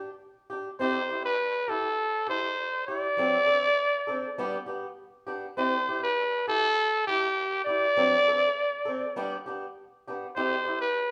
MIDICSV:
0, 0, Header, 1, 4, 480
1, 0, Start_track
1, 0, Key_signature, 0, "major"
1, 0, Tempo, 598205
1, 636, Time_signature, 4, 2, 24, 8
1, 8916, End_track
2, 0, Start_track
2, 0, Title_t, "Trumpet"
2, 0, Program_c, 0, 56
2, 646, Note_on_c, 0, 72, 106
2, 977, Note_off_c, 0, 72, 0
2, 1004, Note_on_c, 0, 71, 98
2, 1359, Note_on_c, 0, 69, 102
2, 1371, Note_off_c, 0, 71, 0
2, 1835, Note_off_c, 0, 69, 0
2, 1839, Note_on_c, 0, 72, 104
2, 2283, Note_off_c, 0, 72, 0
2, 2302, Note_on_c, 0, 74, 117
2, 3714, Note_off_c, 0, 74, 0
2, 4477, Note_on_c, 0, 72, 105
2, 4812, Note_off_c, 0, 72, 0
2, 4839, Note_on_c, 0, 71, 98
2, 5169, Note_off_c, 0, 71, 0
2, 5198, Note_on_c, 0, 69, 110
2, 5643, Note_off_c, 0, 69, 0
2, 5670, Note_on_c, 0, 67, 102
2, 6119, Note_off_c, 0, 67, 0
2, 6135, Note_on_c, 0, 74, 119
2, 7553, Note_off_c, 0, 74, 0
2, 8313, Note_on_c, 0, 72, 105
2, 8651, Note_off_c, 0, 72, 0
2, 8673, Note_on_c, 0, 71, 96
2, 8916, Note_off_c, 0, 71, 0
2, 8916, End_track
3, 0, Start_track
3, 0, Title_t, "Steel-string acoustic guitar"
3, 0, Program_c, 1, 25
3, 400, Note_on_c, 1, 67, 64
3, 421, Note_on_c, 1, 62, 54
3, 544, Note_off_c, 1, 67, 0
3, 555, Note_off_c, 1, 62, 0
3, 637, Note_on_c, 1, 60, 76
3, 646, Note_on_c, 1, 64, 83
3, 654, Note_on_c, 1, 67, 87
3, 782, Note_off_c, 1, 60, 0
3, 787, Note_off_c, 1, 64, 0
3, 790, Note_off_c, 1, 67, 0
3, 876, Note_on_c, 1, 67, 60
3, 895, Note_on_c, 1, 64, 52
3, 1021, Note_off_c, 1, 67, 0
3, 1031, Note_off_c, 1, 64, 0
3, 1346, Note_on_c, 1, 67, 62
3, 1369, Note_on_c, 1, 64, 47
3, 1496, Note_off_c, 1, 67, 0
3, 1507, Note_off_c, 1, 64, 0
3, 1822, Note_on_c, 1, 67, 58
3, 1842, Note_on_c, 1, 64, 43
3, 1973, Note_off_c, 1, 67, 0
3, 1983, Note_off_c, 1, 64, 0
3, 2312, Note_on_c, 1, 67, 56
3, 2332, Note_on_c, 1, 64, 47
3, 2458, Note_off_c, 1, 67, 0
3, 2468, Note_off_c, 1, 64, 0
3, 2544, Note_on_c, 1, 54, 77
3, 2554, Note_on_c, 1, 62, 88
3, 2555, Note_on_c, 1, 60, 88
3, 2562, Note_on_c, 1, 69, 87
3, 2694, Note_off_c, 1, 54, 0
3, 2699, Note_off_c, 1, 62, 0
3, 2700, Note_off_c, 1, 60, 0
3, 2703, Note_off_c, 1, 69, 0
3, 2779, Note_on_c, 1, 69, 63
3, 2791, Note_on_c, 1, 62, 50
3, 2798, Note_on_c, 1, 60, 47
3, 2931, Note_off_c, 1, 69, 0
3, 2937, Note_off_c, 1, 62, 0
3, 2941, Note_off_c, 1, 60, 0
3, 3266, Note_on_c, 1, 69, 66
3, 3279, Note_on_c, 1, 62, 66
3, 3286, Note_on_c, 1, 60, 54
3, 3415, Note_off_c, 1, 69, 0
3, 3421, Note_off_c, 1, 62, 0
3, 3425, Note_off_c, 1, 60, 0
3, 3515, Note_on_c, 1, 55, 88
3, 3519, Note_on_c, 1, 62, 95
3, 3522, Note_on_c, 1, 59, 91
3, 3526, Note_on_c, 1, 67, 100
3, 3659, Note_off_c, 1, 55, 0
3, 3661, Note_off_c, 1, 62, 0
3, 3662, Note_off_c, 1, 59, 0
3, 3665, Note_off_c, 1, 67, 0
3, 3741, Note_on_c, 1, 67, 56
3, 3752, Note_on_c, 1, 62, 57
3, 3762, Note_on_c, 1, 59, 46
3, 3892, Note_off_c, 1, 67, 0
3, 3898, Note_off_c, 1, 62, 0
3, 3903, Note_off_c, 1, 59, 0
3, 4225, Note_on_c, 1, 67, 63
3, 4234, Note_on_c, 1, 62, 58
3, 4238, Note_on_c, 1, 59, 52
3, 4374, Note_off_c, 1, 67, 0
3, 4378, Note_off_c, 1, 62, 0
3, 4381, Note_off_c, 1, 59, 0
3, 4470, Note_on_c, 1, 60, 77
3, 4475, Note_on_c, 1, 64, 80
3, 4479, Note_on_c, 1, 67, 81
3, 4617, Note_off_c, 1, 60, 0
3, 4619, Note_off_c, 1, 64, 0
3, 4621, Note_off_c, 1, 67, 0
3, 4722, Note_on_c, 1, 67, 59
3, 4736, Note_on_c, 1, 64, 46
3, 4863, Note_off_c, 1, 67, 0
3, 4870, Note_off_c, 1, 64, 0
3, 5195, Note_on_c, 1, 67, 56
3, 5209, Note_on_c, 1, 64, 47
3, 5339, Note_off_c, 1, 67, 0
3, 5346, Note_off_c, 1, 64, 0
3, 5675, Note_on_c, 1, 67, 54
3, 5695, Note_on_c, 1, 64, 46
3, 5819, Note_off_c, 1, 67, 0
3, 5829, Note_off_c, 1, 64, 0
3, 6152, Note_on_c, 1, 67, 56
3, 6168, Note_on_c, 1, 64, 46
3, 6298, Note_off_c, 1, 67, 0
3, 6306, Note_off_c, 1, 64, 0
3, 6394, Note_on_c, 1, 60, 83
3, 6395, Note_on_c, 1, 54, 81
3, 6402, Note_on_c, 1, 62, 81
3, 6405, Note_on_c, 1, 69, 86
3, 6539, Note_off_c, 1, 60, 0
3, 6540, Note_off_c, 1, 54, 0
3, 6543, Note_off_c, 1, 62, 0
3, 6545, Note_off_c, 1, 69, 0
3, 6641, Note_on_c, 1, 69, 61
3, 6652, Note_on_c, 1, 62, 56
3, 6662, Note_on_c, 1, 60, 51
3, 6783, Note_off_c, 1, 69, 0
3, 6789, Note_off_c, 1, 62, 0
3, 6793, Note_off_c, 1, 60, 0
3, 7104, Note_on_c, 1, 69, 66
3, 7125, Note_on_c, 1, 60, 54
3, 7255, Note_off_c, 1, 69, 0
3, 7265, Note_off_c, 1, 60, 0
3, 7351, Note_on_c, 1, 55, 87
3, 7356, Note_on_c, 1, 59, 101
3, 7359, Note_on_c, 1, 62, 104
3, 7363, Note_on_c, 1, 67, 95
3, 7499, Note_off_c, 1, 55, 0
3, 7501, Note_off_c, 1, 59, 0
3, 7502, Note_off_c, 1, 62, 0
3, 7504, Note_off_c, 1, 67, 0
3, 7590, Note_on_c, 1, 67, 64
3, 7602, Note_on_c, 1, 62, 61
3, 7609, Note_on_c, 1, 59, 50
3, 7738, Note_off_c, 1, 67, 0
3, 7744, Note_off_c, 1, 62, 0
3, 7747, Note_off_c, 1, 59, 0
3, 8084, Note_on_c, 1, 67, 64
3, 8090, Note_on_c, 1, 62, 61
3, 8103, Note_on_c, 1, 59, 59
3, 8225, Note_off_c, 1, 67, 0
3, 8228, Note_off_c, 1, 62, 0
3, 8235, Note_off_c, 1, 59, 0
3, 8317, Note_on_c, 1, 60, 78
3, 8319, Note_on_c, 1, 64, 77
3, 8327, Note_on_c, 1, 67, 91
3, 8462, Note_off_c, 1, 60, 0
3, 8463, Note_off_c, 1, 64, 0
3, 8467, Note_off_c, 1, 67, 0
3, 8545, Note_on_c, 1, 67, 60
3, 8564, Note_on_c, 1, 64, 49
3, 8696, Note_off_c, 1, 67, 0
3, 8706, Note_off_c, 1, 64, 0
3, 8916, End_track
4, 0, Start_track
4, 0, Title_t, "Muted steel-string acoustic guitar strokes"
4, 7120, Note_on_c, 9, 29, 57
4, 7200, Note_off_c, 9, 29, 0
4, 8916, End_track
0, 0, End_of_file